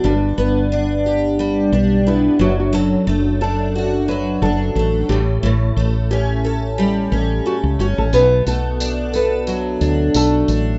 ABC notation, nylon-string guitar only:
X:1
M:4/4
L:1/16
Q:"Swing 16ths" 1/4=89
K:D
V:1 name="Nylon-string guitar"
D8 z4 E2 F F | A4 A4 B2 A4 G2 | E4 G6 z2 F2 F A | B2 A4 B4 z2 A4 |]